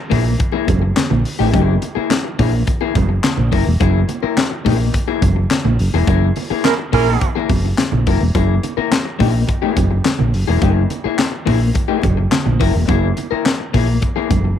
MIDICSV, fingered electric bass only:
0, 0, Header, 1, 3, 480
1, 0, Start_track
1, 0, Tempo, 567644
1, 1299, Time_signature, 4, 2, 24, 8
1, 12337, End_track
2, 0, Start_track
2, 0, Title_t, "Fingered electric bass"
2, 0, Program_c, 0, 33
2, 98, Note_on_c, 0, 34, 102
2, 293, Note_off_c, 0, 34, 0
2, 576, Note_on_c, 0, 30, 99
2, 772, Note_off_c, 0, 30, 0
2, 941, Note_on_c, 0, 34, 79
2, 1038, Note_off_c, 0, 34, 0
2, 1182, Note_on_c, 0, 33, 94
2, 1278, Note_off_c, 0, 33, 0
2, 1300, Note_on_c, 0, 30, 127
2, 1495, Note_off_c, 0, 30, 0
2, 2022, Note_on_c, 0, 34, 103
2, 2216, Note_off_c, 0, 34, 0
2, 2497, Note_on_c, 0, 30, 83
2, 2693, Note_off_c, 0, 30, 0
2, 2860, Note_on_c, 0, 34, 87
2, 2957, Note_off_c, 0, 34, 0
2, 2983, Note_on_c, 0, 30, 89
2, 3079, Note_off_c, 0, 30, 0
2, 3100, Note_on_c, 0, 28, 78
2, 3198, Note_off_c, 0, 28, 0
2, 3219, Note_on_c, 0, 30, 114
2, 3415, Note_off_c, 0, 30, 0
2, 3941, Note_on_c, 0, 34, 91
2, 4136, Note_off_c, 0, 34, 0
2, 4418, Note_on_c, 0, 30, 90
2, 4614, Note_off_c, 0, 30, 0
2, 4779, Note_on_c, 0, 34, 80
2, 4877, Note_off_c, 0, 34, 0
2, 4903, Note_on_c, 0, 30, 101
2, 4999, Note_off_c, 0, 30, 0
2, 5017, Note_on_c, 0, 28, 82
2, 5116, Note_off_c, 0, 28, 0
2, 5135, Note_on_c, 0, 30, 121
2, 5332, Note_off_c, 0, 30, 0
2, 5860, Note_on_c, 0, 34, 97
2, 6055, Note_off_c, 0, 34, 0
2, 6338, Note_on_c, 0, 30, 79
2, 6534, Note_off_c, 0, 30, 0
2, 6703, Note_on_c, 0, 34, 84
2, 6799, Note_off_c, 0, 34, 0
2, 6823, Note_on_c, 0, 30, 88
2, 6919, Note_off_c, 0, 30, 0
2, 6942, Note_on_c, 0, 28, 81
2, 7039, Note_off_c, 0, 28, 0
2, 7060, Note_on_c, 0, 30, 117
2, 7255, Note_off_c, 0, 30, 0
2, 7782, Note_on_c, 0, 34, 101
2, 7976, Note_off_c, 0, 34, 0
2, 8259, Note_on_c, 0, 30, 82
2, 8454, Note_off_c, 0, 30, 0
2, 8628, Note_on_c, 0, 34, 87
2, 8722, Note_off_c, 0, 34, 0
2, 8744, Note_on_c, 0, 30, 89
2, 8840, Note_off_c, 0, 30, 0
2, 8862, Note_on_c, 0, 28, 77
2, 8959, Note_off_c, 0, 28, 0
2, 8980, Note_on_c, 0, 30, 123
2, 9175, Note_off_c, 0, 30, 0
2, 9702, Note_on_c, 0, 34, 90
2, 9896, Note_off_c, 0, 34, 0
2, 10178, Note_on_c, 0, 30, 91
2, 10373, Note_off_c, 0, 30, 0
2, 10537, Note_on_c, 0, 34, 97
2, 10635, Note_off_c, 0, 34, 0
2, 10662, Note_on_c, 0, 30, 98
2, 10759, Note_off_c, 0, 30, 0
2, 10782, Note_on_c, 0, 28, 76
2, 10879, Note_off_c, 0, 28, 0
2, 10898, Note_on_c, 0, 30, 120
2, 11094, Note_off_c, 0, 30, 0
2, 11619, Note_on_c, 0, 34, 91
2, 11814, Note_off_c, 0, 34, 0
2, 12096, Note_on_c, 0, 30, 84
2, 12293, Note_off_c, 0, 30, 0
2, 12337, End_track
3, 0, Start_track
3, 0, Title_t, "Muted fingered electric bass strokes"
3, 1661, Note_on_c, 9, 29, 52
3, 1746, Note_off_c, 9, 29, 0
3, 3580, Note_on_c, 9, 29, 50
3, 3664, Note_off_c, 9, 29, 0
3, 5502, Note_on_c, 9, 29, 59
3, 5587, Note_off_c, 9, 29, 0
3, 7421, Note_on_c, 9, 29, 53
3, 7506, Note_off_c, 9, 29, 0
3, 9344, Note_on_c, 9, 29, 58
3, 9429, Note_off_c, 9, 29, 0
3, 11262, Note_on_c, 9, 29, 56
3, 11346, Note_off_c, 9, 29, 0
3, 12337, End_track
0, 0, End_of_file